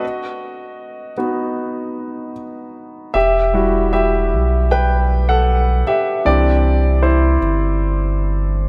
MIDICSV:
0, 0, Header, 1, 3, 480
1, 0, Start_track
1, 0, Tempo, 781250
1, 16, Time_signature, 4, 2, 24, 8
1, 2896, Tempo, 771208
1, 5368, End_track
2, 0, Start_track
2, 0, Title_t, "Grand piano"
2, 0, Program_c, 0, 0
2, 0, Control_c, 0, 64, 127
2, 0, Note_on_c, 0, 66, 59
2, 0, Note_on_c, 0, 75, 76
2, 25, Control_c, 0, 64, 0
2, 127, Control_c, 0, 64, 127
2, 694, Note_off_c, 0, 75, 0
2, 704, Note_off_c, 0, 66, 0
2, 722, Note_on_c, 0, 59, 37
2, 725, Note_on_c, 0, 63, 32
2, 729, Note_on_c, 0, 66, 40
2, 1425, Note_off_c, 0, 59, 0
2, 1426, Note_off_c, 0, 63, 0
2, 1428, Note_off_c, 0, 66, 0
2, 1928, Note_on_c, 0, 76, 75
2, 1938, Note_on_c, 0, 67, 60
2, 1946, Control_c, 0, 64, 0
2, 2062, Control_c, 0, 64, 127
2, 2173, Note_on_c, 0, 55, 41
2, 2175, Note_on_c, 0, 64, 38
2, 2179, Note_on_c, 0, 66, 47
2, 2395, Note_off_c, 0, 67, 0
2, 2404, Note_off_c, 0, 76, 0
2, 2413, Note_on_c, 0, 76, 68
2, 2419, Note_on_c, 0, 67, 56
2, 2870, Note_off_c, 0, 55, 0
2, 2871, Note_off_c, 0, 64, 0
2, 2873, Note_off_c, 0, 66, 0
2, 2873, Note_off_c, 0, 67, 0
2, 2896, Note_on_c, 0, 79, 70
2, 2899, Note_on_c, 0, 71, 57
2, 2909, Note_off_c, 0, 76, 0
2, 3235, Note_off_c, 0, 71, 0
2, 3253, Note_on_c, 0, 78, 73
2, 3257, Note_on_c, 0, 69, 55
2, 3269, Note_off_c, 0, 79, 0
2, 3593, Note_off_c, 0, 78, 0
2, 3595, Note_off_c, 0, 69, 0
2, 3617, Note_on_c, 0, 76, 71
2, 3621, Note_on_c, 0, 67, 54
2, 3842, Note_off_c, 0, 76, 0
2, 3844, Note_off_c, 0, 67, 0
2, 3853, Note_on_c, 0, 52, 43
2, 3854, Note_on_c, 0, 60, 43
2, 3857, Note_on_c, 0, 74, 77
2, 3859, Note_on_c, 0, 62, 49
2, 3861, Note_on_c, 0, 67, 59
2, 3868, Control_c, 0, 64, 0
2, 3982, Control_c, 0, 64, 127
2, 4315, Note_off_c, 0, 67, 0
2, 4335, Note_on_c, 0, 72, 59
2, 4336, Note_on_c, 0, 64, 49
2, 4352, Note_off_c, 0, 74, 0
2, 4550, Note_off_c, 0, 52, 0
2, 4551, Note_off_c, 0, 60, 0
2, 4553, Note_off_c, 0, 62, 0
2, 5368, Note_off_c, 0, 64, 0
2, 5368, Note_off_c, 0, 72, 0
2, 5368, End_track
3, 0, Start_track
3, 0, Title_t, "Sub bass"
3, 0, Program_c, 1, 38
3, 1934, Note_on_c, 1, 28, 90
3, 2659, Note_on_c, 1, 35, 83
3, 2668, Note_off_c, 1, 28, 0
3, 3596, Note_off_c, 1, 35, 0
3, 3860, Note_on_c, 1, 36, 93
3, 4554, Note_off_c, 1, 36, 0
3, 4580, Note_on_c, 1, 31, 83
3, 5368, Note_off_c, 1, 31, 0
3, 5368, End_track
0, 0, End_of_file